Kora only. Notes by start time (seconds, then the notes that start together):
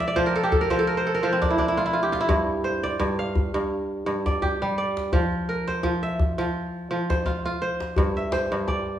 Already playing: F3 G4 G5
0.00 E5
0.08 D5
0.16 F3 C5
0.26 A#4
0.36 A4
0.43 G4
0.52 A4
0.61 A#4
0.70 F3 C5
0.79 A4
0.87 A#4
0.97 C5
1.07 A4
1.15 A#4
1.23 F3 C5
1.33 C4
1.42 D4
1.50 E4
1.58 D4
1.68 E4
1.77 F4
1.86 E4
1.93 F4
2.03 G4
2.12 F4
2.20 E4
2.29 G2
2.64 C5
2.83 D5
3.00 G2
3.19 F5
3.54 G2
4.06 G2
4.26 D5
4.42 G4
4.62 G3
4.78 D5
5.13 F3
5.49 A#4
5.68 C5
5.83 F3
6.03 E5
6.38 F3
6.91 F3
7.10 C5
7.26 F4
7.45 F4
7.62 C5
7.98 G2
8.17 E5
8.33 C5
8.52 G2
8.68 D5